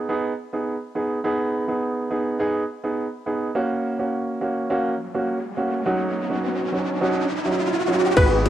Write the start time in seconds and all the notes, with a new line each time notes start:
0.09 B3 D#4 G#4
0.53 B3 D#4 G#4
0.95 B3 D#4 G#4
1.24 B3 D#4 G#4
1.68 B3 D#4 G#4
2.10 B3 D#4 G#4
2.39 B3 D#4 G#4
2.84 B3 D#4 G#4
3.26 B3 D#4 G#4
3.55 A#3 C#4 F#4, riser
3.99 A#3 C#4 F#4
4.41 A#3 C#4 F#4
4.70 A#3 C#4 F#4
5.14 A#3 C#4 F#4
5.57 A#3 C#4 F#4
5.86 F#3 C#4 D#4 F#4
6.30 F#3 C#4 D#4 F#4
6.72 F#3 C#4 D#4 F#4
7.01 F#3 C#4 D#4 F#4
7.45 F#3 C#4 D#4 F#4
7.88 F#3 C#4 D#4 F#4
8.17 G#1 B3 D#4 G#4 B4, kick, closed hi-hat, crash, high bongo
8.46 closed hi-hat, high bongo